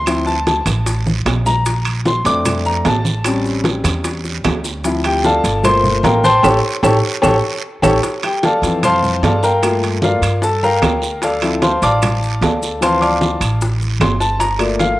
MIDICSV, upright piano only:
0, 0, Header, 1, 2, 480
1, 0, Start_track
1, 0, Key_signature, -1, "minor"
1, 0, Tempo, 398406
1, 77, Time_signature, 4, 2, 24, 8
1, 18070, End_track
2, 0, Start_track
2, 0, Title_t, "Upright piano"
2, 0, Program_c, 0, 0
2, 0, Note_on_c, 0, 84, 106
2, 80, Note_on_c, 0, 53, 54
2, 91, Note_on_c, 0, 60, 51
2, 91, Note_on_c, 0, 64, 57
2, 286, Note_off_c, 0, 84, 0
2, 318, Note_on_c, 0, 81, 85
2, 399, Note_off_c, 0, 53, 0
2, 404, Note_off_c, 0, 60, 0
2, 404, Note_off_c, 0, 64, 0
2, 546, Note_off_c, 0, 81, 0
2, 564, Note_on_c, 0, 81, 78
2, 1233, Note_off_c, 0, 81, 0
2, 1760, Note_on_c, 0, 82, 95
2, 2432, Note_off_c, 0, 82, 0
2, 2495, Note_on_c, 0, 84, 85
2, 2713, Note_on_c, 0, 57, 55
2, 2714, Note_on_c, 0, 60, 48
2, 2720, Note_off_c, 0, 84, 0
2, 2723, Note_on_c, 0, 62, 57
2, 2724, Note_on_c, 0, 86, 104
2, 3168, Note_off_c, 0, 86, 0
2, 3203, Note_on_c, 0, 82, 89
2, 3400, Note_off_c, 0, 57, 0
2, 3401, Note_off_c, 0, 60, 0
2, 3406, Note_off_c, 0, 62, 0
2, 3434, Note_off_c, 0, 82, 0
2, 3462, Note_on_c, 0, 81, 90
2, 3928, Note_on_c, 0, 55, 52
2, 3933, Note_on_c, 0, 60, 54
2, 3940, Note_on_c, 0, 61, 63
2, 4123, Note_off_c, 0, 81, 0
2, 5796, Note_off_c, 0, 55, 0
2, 5799, Note_off_c, 0, 60, 0
2, 5802, Note_off_c, 0, 61, 0
2, 5836, Note_on_c, 0, 53, 55
2, 5845, Note_on_c, 0, 60, 51
2, 5852, Note_on_c, 0, 64, 64
2, 6083, Note_on_c, 0, 79, 82
2, 6088, Note_on_c, 0, 67, 66
2, 6315, Note_off_c, 0, 79, 0
2, 6317, Note_off_c, 0, 67, 0
2, 6329, Note_on_c, 0, 81, 93
2, 6332, Note_on_c, 0, 69, 68
2, 6332, Note_on_c, 0, 77, 70
2, 6333, Note_on_c, 0, 74, 65
2, 6522, Note_off_c, 0, 53, 0
2, 6527, Note_off_c, 0, 60, 0
2, 6531, Note_off_c, 0, 64, 0
2, 6772, Note_off_c, 0, 81, 0
2, 6773, Note_off_c, 0, 77, 0
2, 6774, Note_off_c, 0, 69, 0
2, 6774, Note_off_c, 0, 74, 0
2, 6787, Note_on_c, 0, 57, 57
2, 6796, Note_on_c, 0, 58, 55
2, 6801, Note_on_c, 0, 65, 63
2, 6801, Note_on_c, 0, 84, 106
2, 6803, Note_on_c, 0, 72, 89
2, 7248, Note_off_c, 0, 84, 0
2, 7249, Note_off_c, 0, 72, 0
2, 7273, Note_on_c, 0, 82, 83
2, 7278, Note_on_c, 0, 77, 71
2, 7278, Note_on_c, 0, 79, 73
2, 7281, Note_on_c, 0, 70, 72
2, 7478, Note_off_c, 0, 57, 0
2, 7483, Note_off_c, 0, 58, 0
2, 7486, Note_off_c, 0, 65, 0
2, 7505, Note_off_c, 0, 79, 0
2, 7510, Note_off_c, 0, 82, 0
2, 7513, Note_off_c, 0, 77, 0
2, 7514, Note_off_c, 0, 70, 0
2, 7520, Note_on_c, 0, 84, 123
2, 7523, Note_on_c, 0, 79, 93
2, 7525, Note_on_c, 0, 81, 94
2, 7527, Note_on_c, 0, 72, 96
2, 7744, Note_off_c, 0, 84, 0
2, 7746, Note_off_c, 0, 79, 0
2, 7746, Note_on_c, 0, 73, 102
2, 7747, Note_off_c, 0, 72, 0
2, 7747, Note_off_c, 0, 81, 0
2, 7748, Note_on_c, 0, 67, 95
2, 7753, Note_on_c, 0, 69, 100
2, 7906, Note_off_c, 0, 73, 0
2, 7907, Note_off_c, 0, 67, 0
2, 7910, Note_off_c, 0, 69, 0
2, 8225, Note_on_c, 0, 67, 99
2, 8229, Note_on_c, 0, 69, 96
2, 8231, Note_on_c, 0, 73, 94
2, 8385, Note_off_c, 0, 67, 0
2, 8388, Note_off_c, 0, 69, 0
2, 8389, Note_off_c, 0, 73, 0
2, 8697, Note_on_c, 0, 73, 112
2, 8698, Note_on_c, 0, 67, 100
2, 8700, Note_on_c, 0, 69, 102
2, 8861, Note_off_c, 0, 67, 0
2, 8861, Note_off_c, 0, 73, 0
2, 8863, Note_off_c, 0, 69, 0
2, 9425, Note_on_c, 0, 67, 106
2, 9431, Note_on_c, 0, 69, 97
2, 9432, Note_on_c, 0, 73, 101
2, 9586, Note_off_c, 0, 67, 0
2, 9589, Note_off_c, 0, 69, 0
2, 9590, Note_off_c, 0, 73, 0
2, 9928, Note_on_c, 0, 67, 68
2, 9929, Note_on_c, 0, 79, 84
2, 10159, Note_off_c, 0, 67, 0
2, 10159, Note_off_c, 0, 79, 0
2, 10177, Note_on_c, 0, 81, 88
2, 10180, Note_on_c, 0, 69, 71
2, 10181, Note_on_c, 0, 77, 74
2, 10182, Note_on_c, 0, 74, 66
2, 10396, Note_on_c, 0, 53, 51
2, 10407, Note_on_c, 0, 60, 51
2, 10413, Note_on_c, 0, 52, 57
2, 10618, Note_off_c, 0, 81, 0
2, 10619, Note_off_c, 0, 69, 0
2, 10620, Note_off_c, 0, 74, 0
2, 10620, Note_off_c, 0, 77, 0
2, 10651, Note_on_c, 0, 84, 102
2, 10656, Note_on_c, 0, 72, 81
2, 10658, Note_on_c, 0, 81, 83
2, 10659, Note_on_c, 0, 77, 82
2, 11085, Note_off_c, 0, 53, 0
2, 11091, Note_off_c, 0, 60, 0
2, 11094, Note_off_c, 0, 52, 0
2, 11095, Note_off_c, 0, 84, 0
2, 11097, Note_off_c, 0, 72, 0
2, 11098, Note_off_c, 0, 81, 0
2, 11099, Note_off_c, 0, 77, 0
2, 11129, Note_on_c, 0, 81, 89
2, 11135, Note_on_c, 0, 74, 70
2, 11135, Note_on_c, 0, 77, 70
2, 11136, Note_on_c, 0, 69, 65
2, 11354, Note_off_c, 0, 77, 0
2, 11360, Note_off_c, 0, 81, 0
2, 11363, Note_off_c, 0, 74, 0
2, 11363, Note_on_c, 0, 82, 90
2, 11364, Note_off_c, 0, 69, 0
2, 11369, Note_on_c, 0, 70, 77
2, 11371, Note_on_c, 0, 79, 78
2, 11372, Note_on_c, 0, 77, 77
2, 11598, Note_on_c, 0, 57, 52
2, 11609, Note_on_c, 0, 58, 50
2, 11620, Note_on_c, 0, 65, 63
2, 11811, Note_off_c, 0, 82, 0
2, 11814, Note_off_c, 0, 70, 0
2, 11815, Note_off_c, 0, 77, 0
2, 11815, Note_off_c, 0, 79, 0
2, 12082, Note_off_c, 0, 65, 0
2, 12096, Note_on_c, 0, 70, 64
2, 12098, Note_on_c, 0, 77, 79
2, 12100, Note_on_c, 0, 65, 61
2, 12100, Note_on_c, 0, 74, 61
2, 12286, Note_off_c, 0, 57, 0
2, 12292, Note_off_c, 0, 58, 0
2, 12538, Note_off_c, 0, 70, 0
2, 12539, Note_off_c, 0, 77, 0
2, 12540, Note_off_c, 0, 65, 0
2, 12540, Note_off_c, 0, 74, 0
2, 12567, Note_on_c, 0, 81, 87
2, 12579, Note_on_c, 0, 69, 73
2, 12800, Note_off_c, 0, 81, 0
2, 12806, Note_off_c, 0, 69, 0
2, 12810, Note_on_c, 0, 82, 97
2, 12816, Note_on_c, 0, 77, 83
2, 12817, Note_on_c, 0, 79, 76
2, 12821, Note_on_c, 0, 70, 76
2, 13480, Note_off_c, 0, 82, 0
2, 13483, Note_off_c, 0, 77, 0
2, 13483, Note_off_c, 0, 79, 0
2, 13486, Note_off_c, 0, 70, 0
2, 13530, Note_on_c, 0, 81, 79
2, 13535, Note_on_c, 0, 77, 68
2, 13539, Note_on_c, 0, 74, 68
2, 13542, Note_on_c, 0, 69, 68
2, 13765, Note_on_c, 0, 53, 54
2, 13771, Note_on_c, 0, 60, 47
2, 13775, Note_on_c, 0, 64, 54
2, 13974, Note_off_c, 0, 81, 0
2, 13977, Note_off_c, 0, 77, 0
2, 13979, Note_off_c, 0, 74, 0
2, 13981, Note_off_c, 0, 69, 0
2, 14005, Note_on_c, 0, 77, 71
2, 14005, Note_on_c, 0, 81, 68
2, 14008, Note_on_c, 0, 84, 86
2, 14013, Note_on_c, 0, 72, 68
2, 14084, Note_off_c, 0, 53, 0
2, 14088, Note_off_c, 0, 60, 0
2, 14090, Note_off_c, 0, 64, 0
2, 14235, Note_off_c, 0, 81, 0
2, 14238, Note_off_c, 0, 77, 0
2, 14239, Note_off_c, 0, 84, 0
2, 14242, Note_off_c, 0, 72, 0
2, 14252, Note_on_c, 0, 86, 104
2, 14253, Note_on_c, 0, 81, 83
2, 14256, Note_on_c, 0, 74, 88
2, 14259, Note_on_c, 0, 77, 79
2, 14920, Note_off_c, 0, 86, 0
2, 14921, Note_off_c, 0, 81, 0
2, 14922, Note_off_c, 0, 74, 0
2, 14924, Note_off_c, 0, 77, 0
2, 14969, Note_on_c, 0, 77, 49
2, 14969, Note_on_c, 0, 81, 64
2, 14971, Note_on_c, 0, 74, 51
2, 14973, Note_on_c, 0, 69, 50
2, 15413, Note_off_c, 0, 77, 0
2, 15413, Note_off_c, 0, 81, 0
2, 15414, Note_off_c, 0, 74, 0
2, 15415, Note_off_c, 0, 69, 0
2, 15431, Note_on_c, 0, 53, 51
2, 15443, Note_on_c, 0, 60, 48
2, 15446, Note_on_c, 0, 77, 72
2, 15446, Note_on_c, 0, 84, 91
2, 15452, Note_on_c, 0, 72, 70
2, 15453, Note_on_c, 0, 52, 62
2, 15454, Note_on_c, 0, 81, 72
2, 15662, Note_off_c, 0, 77, 0
2, 15663, Note_off_c, 0, 81, 0
2, 15676, Note_on_c, 0, 86, 82
2, 15677, Note_off_c, 0, 84, 0
2, 15680, Note_off_c, 0, 72, 0
2, 15680, Note_on_c, 0, 77, 74
2, 15681, Note_on_c, 0, 74, 69
2, 15681, Note_on_c, 0, 81, 71
2, 16120, Note_off_c, 0, 53, 0
2, 16126, Note_off_c, 0, 60, 0
2, 16131, Note_off_c, 0, 52, 0
2, 16350, Note_off_c, 0, 86, 0
2, 16352, Note_off_c, 0, 74, 0
2, 16352, Note_off_c, 0, 77, 0
2, 16352, Note_off_c, 0, 81, 0
2, 16879, Note_on_c, 0, 84, 83
2, 17112, Note_off_c, 0, 84, 0
2, 17112, Note_on_c, 0, 81, 94
2, 17345, Note_on_c, 0, 82, 99
2, 17348, Note_off_c, 0, 81, 0
2, 17575, Note_on_c, 0, 57, 52
2, 17577, Note_on_c, 0, 58, 46
2, 17582, Note_on_c, 0, 74, 61
2, 17583, Note_off_c, 0, 82, 0
2, 17590, Note_on_c, 0, 65, 53
2, 17822, Note_off_c, 0, 74, 0
2, 17828, Note_on_c, 0, 77, 88
2, 18064, Note_off_c, 0, 77, 0
2, 18070, Note_off_c, 0, 57, 0
2, 18070, Note_off_c, 0, 58, 0
2, 18070, Note_off_c, 0, 65, 0
2, 18070, End_track
0, 0, End_of_file